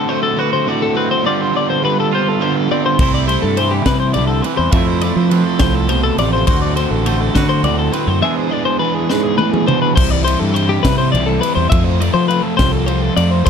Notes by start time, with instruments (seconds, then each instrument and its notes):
Already playing: clean electric guitar D3 C4 F#4
0.08 overdriven electric guitar D3 A3 C4 F#4, clean electric guitar C5
0.23 clean electric guitar A4
0.36 overdriven electric guitar D3 A3 C4 F#4, clean electric guitar B4
0.53 clean electric guitar C5
0.67 clean electric guitar A2 D5, overdriven electric guitar D3 A3 C4 F#4
0.82 clean electric guitar A4
0.94 overdriven electric guitar D3 A3 C4 F#4, clean electric guitar B4
1.11 clean electric guitar C5
1.23 overdriven electric guitar D3 G3 B3 F4, clean electric guitar C4 D5
1.42 clean electric guitar C5
1.53 overdriven electric guitar D3 G3 B3 F4, clean electric guitar D5
1.70 clean electric guitar C5
1.82 overdriven electric guitar D3 G3 B3 F4, clean electric guitar B4
2.00 clean electric guitar A4
2.11 overdriven electric guitar D3 G3 B3 F4, clean electric guitar C5
2.29 clean electric guitar A4
2.40 overdriven electric guitar D3 G3 B3 F4, clean electric guitar C5
2.56 clean electric guitar A4
2.68 overdriven electric guitar D3 G3 B3 F4, clean electric guitar D5
2.72 clean electric guitar C4
2.86 clean electric guitar C5
2.99 fingered electric bass C2, overdriven electric guitar C3 G3 C4 E4, clean electric guitar A3 C5, kick, crash
3.14 clean electric guitar D5
3.27 overdriven electric guitar C3 G3 C4 E4, clean electric guitar C5, ride
3.42 fingered electric bass G2, clean electric guitar A4
3.57 overdriven electric guitar C3 G3 C4 E4, clean electric guitar E3 C5, ride
3.71 clean electric guitar G4
3.85 fingered electric bass C3, overdriven electric guitar C3 G3 C4 E4, clean electric guitar B4, kick, snare, ride
4.00 clean electric guitar C5
4.14 fingered electric bass C2, overdriven electric guitar C3 G3 C4 E4, clean electric guitar D3 D5, ride
4.27 clean electric guitar A4
4.42 overdriven electric guitar C3 G3 C4 E4, clean electric guitar E3 B4, ride
4.57 fingered electric bass E2, clean electric guitar C5
4.72 fingered electric bass F2, clean electric guitar F2 E5, overdriven electric guitar F3 A3 C4 F4, kick, ride
4.77 clean electric guitar E4
4.87 clean electric guitar C5
5.01 overdriven electric guitar F3 A3 C4 F4, clean electric guitar D5, ride
5.16 fingered electric bass F3, clean electric guitar C5
5.30 overdriven electric guitar F3 A3 C4 F4, clean electric guitar B4, ride
5.45 clean electric guitar A4
5.59 fingered electric bass C2, clean electric guitar A2 C5, overdriven electric guitar F3 A3 C4 F4, kick, snare, ride
5.75 clean electric guitar A4
5.89 clean electric guitar B2 C5, overdriven electric guitar F3 A3 C4 F4, ride
6.04 clean electric guitar A4
6.18 fingered electric bass A1, clean electric guitar C3 D5, overdriven electric guitar F3 A3 C4 F4, ride
6.33 clean electric guitar C5
6.47 fingered electric bass D2, overdriven electric guitar D3 A3 C4 F#4, clean electric guitar C5, kick, crash
6.62 clean electric guitar D5
6.76 overdriven electric guitar D3 A3 C4 F#4, clean electric guitar C5, ride
6.91 fingered electric bass A1, clean electric guitar A4
7.05 overdriven electric guitar D3 A3 C4 F#4, clean electric guitar C5, ride
7.21 clean electric guitar A4
7.34 fingered electric bass D3, overdriven electric guitar D3 A3 C4 F#4, clean electric guitar B4, kick, snare, ride
7.49 clean electric guitar C5
7.63 fingered electric bass D2, clean electric guitar A2 D5, overdriven electric guitar D3 A3 C4 F#4, ride
7.79 clean electric guitar A4
7.92 overdriven electric guitar D3 A3 C4 F#4, clean electric guitar B4, ride
8.07 fingered electric bass F#2, clean electric guitar C5
8.21 clean electric guitar E2 G#3 E5, overdriven electric guitar E3 B3 D4 G#4
8.36 clean electric guitar C5
8.49 overdriven electric guitar E3 B3 D4 G#4, clean electric guitar D5
8.65 clean electric guitar C5
8.79 overdriven electric guitar E3 B3 D4 G#4, clean electric guitar B4
8.95 clean electric guitar G#4
9.09 clean electric guitar G#2 B4, overdriven electric guitar E3 B3 D4 G#4, snare
9.23 clean electric guitar G#4
9.38 clean electric guitar A2 B4, overdriven electric guitar E3 B3 D4 G#4, high tom
9.53 clean electric guitar G#4, mid tom
9.66 clean electric guitar B2 C5, overdriven electric guitar E3 B3 D4 G#4, mid tom
9.82 clean electric guitar B4
9.95 fingered electric bass C2, overdriven electric guitar E3 G3 C4 E4, clean electric guitar C5, kick, crash
10.10 clean electric guitar D5
10.23 overdriven electric guitar E3 G3 C4 E4, clean electric guitar C5
10.28 ride
10.40 fingered electric bass G2, clean electric guitar A4
10.54 overdriven electric guitar E3 G3 C4 E4, clean electric guitar C5, ride
10.69 clean electric guitar G4
10.83 fingered electric bass C3, overdriven electric guitar E3 G3 C4 E4, clean electric guitar B4, kick, snare, ride
10.98 clean electric guitar C5
11.12 fingered electric bass C2, overdriven electric guitar E3 G3 C4 E4, clean electric guitar D5, ride
11.26 clean electric guitar A4
11.41 overdriven electric guitar E3 G3 C4 E4, clean electric guitar B4, ride
11.55 fingered electric bass E2, clean electric guitar C5
11.70 fingered electric bass F2, overdriven electric guitar F3 A3 C4 F4, clean electric guitar E5, kick, ride
11.84 clean electric guitar C5
12.01 overdriven electric guitar F3 A3 C4 F4, clean electric guitar D5, ride
12.14 fingered electric bass F3, clean electric guitar C5
12.28 overdriven electric guitar F3 A3 C4 F4, clean electric guitar B4, ride
12.43 clean electric guitar A4
12.57 fingered electric bass C2, overdriven electric guitar F3 A3 C4 F4, clean electric guitar C5, kick, snare, ride
12.72 clean electric guitar A4
12.86 overdriven electric guitar F3 A3 C4 F4, clean electric guitar C5, ride
13.02 clean electric guitar A4
13.17 fingered electric bass F2, overdriven electric guitar F3 A3 C4 F4, clean electric guitar D5, ride
13.31 clean electric guitar C5
13.44 fingered electric bass D2, overdriven electric guitar D3 A3 C4 F#4, clean electric guitar C5, kick, crash